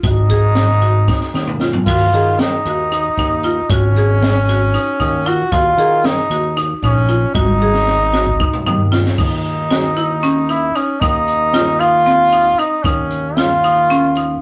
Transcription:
0.03 1.12 G#1 loud
0.03 1.57 D#4 loud
0.03 0.21 F#4 medium
0.03 kick loud
0.03 closed hi-hat medium
0.03 shaker medium
0.29 0.63 G#4 medium
0.29 kick medium
0.29 snare soft
0.29 closed hi-hat medium
0.55 snare loud
0.55 closed hi-hat medium
0.82 0.99 F#4 medium
0.82 closed hi-hat medium
1.08 1.25 D#4 medium
1.08 kick loud
1.08 snare medium
1.08 shaker medium
1.21 snare soft
1.34 1.78 D#2 medium
1.34 1.52 D#4 medium
1.34 snare medium
1.47 mid tom medium
1.60 1.78 F4 medium
1.60 snare medium
1.73 floor tom medium
1.86 2.09 D#2 loud
1.86 2.41 F4 medium
1.86 2.04 F#4 medium
1.86 kick loud
1.86 closed hi-hat medium
1.86 crash medium
1.86 shaker medium
2.13 2.57 D#3 loud
2.13 2.47 G#4 medium
2.13 closed hi-hat medium
2.39 3.72 D#4 medium
2.39 snare loud
2.39 closed hi-hat medium
2.65 3.09 D#2 medium
2.65 2.83 F#4 medium
2.65 closed hi-hat medium
2.91 3.08 D#4 medium
2.91 closed hi-hat medium
2.91 shaker medium
3.18 3.61 D#2 medium
3.18 3.35 D#4 medium
3.18 kick medium
3.18 snare soft
3.18 closed hi-hat medium
3.43 3.61 F4 medium
3.43 closed hi-hat medium
3.69 4.78 G#1 medium
3.69 5.28 C#4 loud
3.69 3.87 F#4 medium
3.69 kick loud
3.69 closed hi-hat medium
3.69 shaker medium
3.96 4.30 G#4 medium
3.96 closed hi-hat medium
4.22 snare loud
4.22 closed hi-hat medium
4.49 4.65 F#4 medium
4.49 snare soft
4.49 closed hi-hat medium
4.74 4.91 D#4 medium
4.74 closed hi-hat medium
4.74 shaker medium
5.00 5.44 D#2 medium
5.00 5.17 D#4 medium
5.00 kick medium
5.00 closed hi-hat medium
5.26 5.43 F4 medium
5.26 5.54 F#4 loud
5.26 closed hi-hat soft
5.52 5.74 D#2 loud
5.52 6.07 F4 loud
5.52 5.69 F#4 medium
5.52 kick loud
5.52 closed hi-hat medium
5.52 shaker medium
5.77 6.21 D#3 loud
5.77 6.11 G#4 medium
5.77 closed hi-hat medium
6.04 6.57 D#4 loud
6.04 snare loud
6.04 closed hi-hat medium
6.30 6.74 D#2 medium
6.30 6.47 F#4 medium
6.30 closed hi-hat medium
6.56 6.74 D#4 medium
6.56 closed hi-hat medium
6.56 shaker medium
6.83 7.26 A#1 medium
6.83 7.32 C#4 loud
6.83 7.00 D#4 medium
6.83 kick medium
6.83 closed hi-hat medium
7.08 7.25 F4 medium
7.08 closed hi-hat medium
7.34 8.44 G#1 loud
7.34 8.88 D#4 loud
7.34 7.52 F#4 medium
7.34 kick loud
7.34 high tom medium
7.34 shaker medium
7.48 high tom medium
7.62 7.95 G#4 medium
7.74 snare medium
7.87 snare medium
8.13 8.30 F#4 medium
8.13 snare medium
8.13 shaker soft
8.27 kick medium
8.39 8.56 D#4 medium
8.39 kick loud
8.39 shaker medium
8.53 mid tom medium
8.66 9.10 D#2 loud
8.66 8.83 D#4 medium
8.66 floor tom medium
8.92 9.08 F4 medium
8.92 snare medium
9.06 snare medium
9.18 10.71 D#2 medium
9.18 10.52 D#4 medium
9.18 9.51 D#4 medium
9.18 kick loud
9.18 crash loud
9.18 shaker medium
9.45 closed hi-hat medium
9.71 9.87 F#4 medium
9.71 snare loud
9.71 closed hi-hat medium
9.71 shaker soft
9.96 10.13 E4 medium
9.96 closed hi-hat medium
10.23 10.40 C#4 medium
10.23 closed hi-hat medium
10.23 shaker medium
10.49 10.66 D#4 medium
10.49 10.77 E4 medium
10.49 closed hi-hat medium
10.76 11.02 C#4 medium
10.76 10.92 D#4 medium
10.76 closed hi-hat medium
10.76 shaker soft
11.00 12.54 D#2 loud
11.00 11.81 D#4 loud
11.00 11.35 D#4 medium
11.00 kick loud
11.00 closed hi-hat medium
11.00 shaker medium
11.28 closed hi-hat medium
11.53 11.71 F4 medium
11.53 snare loud
11.53 closed hi-hat medium
11.80 11.97 D#4 medium
11.80 12.60 F4 loud
11.80 closed hi-hat medium
12.06 12.23 C4 medium
12.06 closed hi-hat medium
12.06 shaker medium
12.32 12.49 D#4 medium
12.32 closed hi-hat medium
12.58 12.85 D#4 loud
12.58 12.76 D#4 medium
12.58 closed hi-hat medium
12.58 shaker soft
12.83 14.37 D#2 loud
12.83 13.39 C#4 medium
12.83 13.18 D#4 medium
12.83 kick loud
12.83 closed hi-hat medium
12.83 shaker medium
13.10 closed hi-hat medium
13.37 14.41 F4 loud
13.37 13.54 F4 medium
13.37 snare loud
13.37 closed hi-hat medium
13.37 shaker soft
13.63 13.80 D#4 medium
13.63 closed hi-hat medium
13.90 14.07 C#4 medium
13.90 closed hi-hat medium
13.90 shaker medium
14.15 14.33 D#4 medium
14.15 closed hi-hat medium

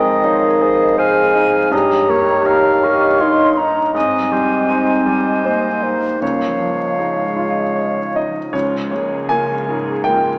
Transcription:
0.00 1.68 F2 soft
0.00 1.75 F2 soft
0.00 1.75 F3 soft
0.00 0.47 G#3 soft
0.00 1.46 G#3 soft
0.00 1.22 D#4 soft
0.00 1.75 F4 soft
0.00 0.98 A#4 medium
0.00 0.27 D#5 soft
0.00 0.73 D#5 soft
0.00 0.98 D#5 soft
0.00 0.27 G5 soft
0.24 0.83 D#4 soft
0.24 0.64 C#5 soft
0.24 1.00 F5 soft
0.24 1.75 C6 soft
0.50 1.75 G#4 soft
0.61 1.20 G#4 soft
0.61 0.98 C5 soft
0.74 2.94 D#5 soft
0.98 1.71 G#4 medium
0.98 1.57 C5 soft
0.98 1.75 C5 soft
0.98 1.71 C5 soft
0.98 1.35 F5 soft
0.98 1.72 G#5 soft
1.23 2.20 D#4 soft
1.35 1.72 D#4 soft
1.35 1.74 F5 soft
1.47 1.75 G#3 soft
1.71 3.90 G2 soft
1.71 3.98 G2 soft
1.71 3.21 G4 medium
1.71 3.23 C#5 soft
1.71 2.11 D#5 soft
1.71 2.45 A#5 soft
1.97 3.68 A#3 soft
2.08 2.68 A#3 soft
2.08 2.47 C#5 soft
2.21 3.44 D#4 soft
2.46 3.06 D#4 soft
2.46 3.19 C#5 soft
2.46 3.66 F5 soft
2.46 2.85 A#5 soft
2.72 3.98 A#4 soft
2.83 3.43 A#4 soft
2.83 3.22 C#6 soft
2.95 5.19 D#5 soft
3.20 3.58 D#4 medium
3.20 3.80 C#5 soft
3.20 3.98 C#5 soft
3.20 5.17 D#5 soft
3.20 3.59 C6 soft
3.45 4.44 D#4 soft
3.57 3.94 D#4 soft
3.57 3.95 A#5 soft
3.70 3.98 A#3 soft
3.94 6.24 G#2 soft
3.94 6.17 G#2 soft
3.94 5.41 C4 medium
3.94 4.34 D#5 soft
3.94 5.89 G#5 soft
4.19 5.94 G3 soft
4.31 4.92 G3 soft
4.31 4.70 C5 soft
4.45 5.68 D#4 soft
4.69 5.29 D#4 soft
4.69 5.44 C5 soft
4.69 6.19 C5 soft
5.06 5.67 G3 soft
5.20 7.49 D#5 soft
5.45 6.19 A#3 soft
5.45 6.06 C5 soft
5.45 6.24 C5 soft
5.45 5.85 D#5 soft
5.83 6.21 D#4 soft
5.83 6.24 C5 soft
5.95 6.24 G3 soft
6.20 8.50 C#2 soft
6.20 8.52 C#3 soft
6.20 6.97 A#3 soft
6.20 8.16 C#5 soft
6.20 8.21 C#5 soft
6.20 8.16 F5 soft
6.47 8.26 F3 soft
6.60 7.22 F3 soft
6.73 8.01 D#4 soft
6.98 8.14 G#3 soft
6.98 7.61 D#4 soft
6.98 7.75 C#5 soft
7.25 9.68 F4 soft
7.36 7.99 F4 soft
7.50 8.56 D#5 soft
7.76 8.38 C#5 soft
7.76 10.38 C#5 soft
8.02 8.57 D#4 soft
8.14 8.53 D#4 soft
8.14 8.51 D#5 soft
8.28 10.38 F3 soft
8.53 10.38 C#2 soft
8.53 10.38 C#3 soft
8.53 8.89 G#3 soft
8.53 8.89 F4 soft
8.53 8.90 C#5 soft
8.91 10.05 G#3 soft
8.91 9.30 A#3 soft
8.91 9.31 G#4 soft
8.91 9.53 C#5 soft
9.29 9.68 G#3 soft
9.29 9.90 A#3 soft
9.29 10.38 A#3 soft
9.29 9.68 F4 soft
9.29 10.00 G#5 soft
9.68 10.27 G#2 soft
9.68 10.05 A#3 soft
9.68 10.38 F4 soft
9.68 10.05 G#4 soft
10.04 10.38 G#3 soft
10.04 10.38 A#3 soft
10.04 10.38 F4 soft
10.04 10.38 G5 soft

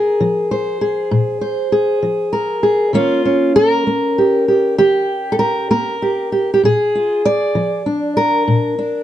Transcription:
0.00 0.80 G#4 medium
0.00 0.51 A#4 medium
0.21 0.75 F3 medium
0.51 1.40 C5 medium
0.81 1.71 G#4 medium
1.11 1.66 A#2 medium
1.41 2.32 C5 medium
1.72 2.62 G#4 medium
2.03 2.58 F3 medium
2.33 2.95 A#4 medium
2.63 2.91 G#4 medium
2.93 3.49 D#3 medium
2.93 3.86 A#3 soft
2.93 3.24 C#4 soft
2.93 3.55 F4 loud
3.25 6.59 C#4 soft
3.56 5.32 A#4 loud
3.87 4.42 A#3 medium
4.18 4.47 G4 soft
4.48 4.77 G4 soft
4.78 5.34 D#3 medium
4.78 5.94 G4 medium
5.32 5.39 A4 medium
5.39 5.69 A#4 medium
5.71 6.26 A#3 medium
5.71 6.63 A#4 medium
6.02 6.31 G4 soft
6.32 6.52 G4 medium
6.54 6.62 G4 medium
6.63 7.18 A#2 medium
6.63 7.86 G#4 loud
6.95 7.25 F4 soft
7.25 8.16 D5 loud
7.55 8.10 F3 medium
7.86 8.78 D4 soft
8.17 9.03 A#4 medium
8.48 9.02 A#2 medium
8.79 9.03 D4 soft

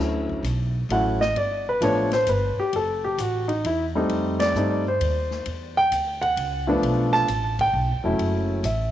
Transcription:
0.00 0.41 D2 medium
0.00 0.42 D2 medium
0.00 0.42 F#3 soft
0.00 0.42 A3 soft
0.00 0.42 C#4 soft
0.00 0.42 E4 medium
0.00 snare soft
0.29 kick soft
0.43 0.88 B1 medium
0.43 hi-hat pedal medium
0.43 ride medium
0.89 1.34 A1 medium
0.89 1.18 F#3 medium
0.89 1.18 A3 soft
0.89 1.18 C#4 soft
0.89 1.18 E4 medium
0.89 1.20 F#5 medium
0.89 ride medium
1.21 1.36 D#5 medium
1.21 snare medium
1.35 1.79 G1 medium
1.35 1.66 D5 medium
1.35 ride medium
1.69 1.82 B4 medium
1.81 2.25 A1 medium
1.81 2.09 F3 medium
1.81 2.09 A3 medium
1.81 2.09 B3 medium
1.81 2.09 D4 medium
1.81 2.12 C#5 medium
1.81 hi-hat pedal medium
1.81 ride medium
2.11 2.27 C5 medium
2.11 snare medium
2.11 ride soft
2.27 2.55 G1 medium
2.27 2.57 B4 medium
2.27 hi-hat pedal medium
2.27 ride medium
2.57 2.73 G4 medium
2.57 muted upright bass stroke soft
2.73 3.17 F#1 medium
2.73 3.04 A4 medium
2.73 ride medium
3.04 3.18 G4 medium
3.18 3.62 A1 medium
3.18 3.48 F#4 medium
3.18 hi-hat pedal soft
3.18 ride medium
3.48 3.63 D#4 medium
3.48 ride soft
3.65 4.08 E2 medium
3.65 3.84 E4 medium
3.65 ride medium
3.95 4.52 G3 medium
3.95 4.53 A3 medium
3.95 4.53 C4 medium
3.95 4.53 D#4 medium
4.09 4.54 F2 medium
4.09 ride medium
4.40 4.82 D5 medium
4.40 snare medium
4.40 ride medium
4.55 4.99 G2 medium
4.55 4.83 G3 medium
4.55 4.83 A3 soft
4.55 4.83 C4 soft
4.55 4.83 D#4 medium
4.55 hi-hat pedal medium
4.88 5.44 C5 medium
5.00 5.45 D#2 medium
5.00 ride medium
5.31 snare soft
5.46 5.90 E2 medium
5.46 ride medium
5.77 6.19 G5 medium
5.91 6.36 D2 medium
5.91 hi-hat pedal medium
5.91 ride medium
6.22 6.79 F#5 medium
6.22 ride soft
6.36 6.81 C#2 medium
6.36 ride medium
6.67 7.25 F3 medium
6.67 7.25 A3 medium
6.67 7.26 B3 medium
6.67 7.26 D4 medium
6.82 7.27 B1 medium
6.82 ride medium
7.13 7.55 A5 loud
7.13 snare soft
7.28 7.72 A1 medium
7.28 hi-hat pedal soft
7.28 ride medium
7.59 8.17 G5 medium
7.59 kick medium
7.59 ride medium
7.73 7.91 B1 medium
7.89 8.03 G1 medium
8.04 8.18 F1 medium
8.04 8.62 F#3 medium
8.04 8.62 A3 medium
8.04 8.62 C#4 medium
8.04 8.63 E4 medium
8.19 8.62 F#1 medium
8.19 ride medium
8.63 8.91 A1 medium
8.63 8.91 E5 medium
8.63 hi-hat pedal medium
8.63 ride medium

